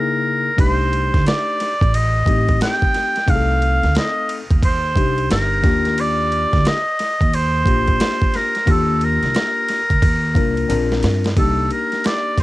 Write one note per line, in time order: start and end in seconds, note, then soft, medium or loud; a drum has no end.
0.00 0.49 C#3 medium
0.00 0.49 A#3 medium
0.00 0.49 D#4 medium
0.00 0.50 E4 medium
0.00 0.50 G#4 medium
0.00 0.55 A#4 medium
0.57 1.08 C2 loud
0.57 1.71 A3 medium
0.57 1.71 D4 medium
0.57 1.71 D#4 medium
0.57 1.72 G4 medium
0.57 1.23 C5 loud
0.57 kick loud
0.57 ride medium
0.93 ride soft
1.14 1.25 D2 medium
1.14 kick medium
1.14 snare soft
1.14 ride soft
1.26 1.97 D5 medium
1.26 snare loud
1.26 hi-hat pedal soft
1.26 ride medium
1.60 snare soft
1.60 ride medium
1.81 2.22 A1 medium
1.81 kick loud
1.81 ride soft
1.94 2.61 D#5 loud
1.94 ride medium
2.25 2.57 A1 medium
2.25 3.13 A3 medium
2.25 3.14 C4 medium
2.25 3.14 D#4 medium
2.25 3.15 G4 medium
2.25 kick medium
2.25 ride medium
2.48 kick medium
2.48 ride soft
2.61 3.31 G5 loud
2.61 snare loud
2.61 hi-hat pedal medium
2.61 ride medium
2.82 kick medium
2.94 snare soft
2.94 ride medium
3.16 snare soft
3.16 ride soft
3.26 3.77 C2 loud
3.26 4.40 A3 medium
3.26 4.41 C4 medium
3.26 4.41 D#4 medium
3.26 3.37 G#4 medium
3.26 3.96 F5 loud
3.26 kick loud
3.26 ride medium
3.35 4.45 A4 medium
3.62 ride soft
3.83 3.94 D2 medium
3.83 snare soft
3.83 ride soft
3.95 4.36 D#5 loud
3.95 snare loud
3.95 hi-hat pedal soft
3.95 ride medium
4.29 ride medium
4.51 4.92 D#2 medium
4.51 kick loud
4.51 ride soft
4.63 5.27 C5 loud
4.63 kick loud
4.63 ride medium
4.95 5.26 C2 medium
4.95 5.63 G3 medium
4.95 5.62 D4 medium
4.95 5.64 D#4 medium
4.95 5.64 G4 medium
4.95 kick medium
4.95 ride medium
5.18 ride soft
5.31 5.61 G1 medium
5.31 6.02 A#4 loud
5.31 snare loud
5.31 hi-hat pedal medium
5.31 ride medium
5.63 6.43 D#2 loud
5.63 6.76 A#3 medium
5.63 6.77 D4 medium
5.63 6.77 F4 medium
5.63 6.78 G4 medium
5.63 kick loud
5.63 snare soft
5.63 ride medium
5.85 snare soft
5.85 ride soft
5.98 6.69 D5 loud
5.98 ride medium
6.32 ride soft
6.53 6.64 D2 loud
6.53 kick medium
6.53 snare soft
6.53 ride soft
6.65 7.37 D#5 loud
6.65 snare loud
6.65 hi-hat pedal soft
6.65 ride medium
6.99 snare soft
6.99 ride medium
7.21 7.62 D#2 medium
7.21 kick loud
7.21 ride soft
7.33 8.38 C5 loud
7.33 ride medium
7.65 7.96 A#1 medium
7.65 8.53 A#3 medium
7.65 8.53 D4 medium
7.65 8.53 F4 medium
7.65 8.54 G4 medium
7.65 kick medium
7.65 ride medium
7.87 kick medium
7.87 ride soft
8.00 snare loud
8.00 hi-hat pedal medium
8.00 ride medium
8.22 kick loud
8.34 8.72 A#4 medium
8.34 snare soft
8.34 ride medium
8.55 snare soft
8.55 ride soft
8.66 9.17 D#2 loud
8.66 9.80 A#3 medium
8.66 9.80 D4 medium
8.66 9.80 F4 medium
8.66 9.81 G4 medium
8.66 kick loud
8.66 ride medium
8.70 9.06 A4 loud
9.01 11.05 A#4 loud
9.01 ride soft
9.23 9.33 C2 medium
9.23 snare soft
9.23 ride soft
9.35 snare loud
9.35 hi-hat pedal soft
9.35 ride medium
9.68 snare soft
9.68 ride medium
9.90 10.01 D2 medium
9.90 kick loud
9.90 ride soft
10.02 10.32 D#2 loud
10.02 kick loud
10.02 ride medium
10.35 10.66 C2 medium
10.35 10.69 A#3 medium
10.35 10.68 D4 medium
10.35 10.68 F4 medium
10.35 10.69 A#4 medium
10.35 kick loud
10.35 ride medium
10.57 ride soft
10.68 11.00 A#1 loud
10.68 11.27 C4 medium
10.68 11.28 D4 medium
10.68 11.28 F4 medium
10.68 11.28 A#4 loud
10.68 hi-hat pedal medium
10.68 ride medium
10.92 snare medium
11.03 11.33 G2 medium
11.03 snare loud
11.03 ride medium
11.24 snare medium
11.24 ride soft
11.36 11.67 C2 loud
11.36 12.43 A#3 medium
11.36 12.43 D4 medium
11.36 12.43 D#4 medium
11.36 12.43 G4 medium
11.36 11.69 A4 medium
11.36 kick loud
11.36 ride medium
11.70 12.08 A#4 medium
11.70 ride soft
11.92 snare soft
11.92 ride soft
12.04 12.39 D5 loud
12.04 snare loud
12.04 hi-hat pedal soft
12.04 ride medium
12.38 kick medium
12.38 snare soft
12.38 ride medium